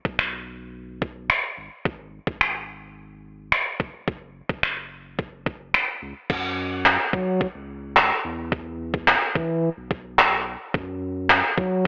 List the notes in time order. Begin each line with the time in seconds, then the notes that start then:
0.05 B1, kick
0.19 finger snap
1.02 kick
1.30 finger snap
1.57 G#1
1.85 G#1, kick
2.27 G#1, kick
2.41 finger snap
3.52 finger snap
3.80 F#1, kick
4.08 F#1, kick
4.49 F#1, kick
4.63 finger snap
5.19 kick
5.46 kick
5.74 finger snap
6.02 C#2
6.30 F#2, kick, crash
6.85 clap
7.13 F#3, kick
7.41 kick
7.55 C#2
7.96 clap
8.24 E2
8.52 kick
8.94 kick
9.08 clap
9.35 E3, kick
9.77 B1
9.91 kick
10.19 clap
10.74 F#2, kick
11.30 clap
11.58 F#3, kick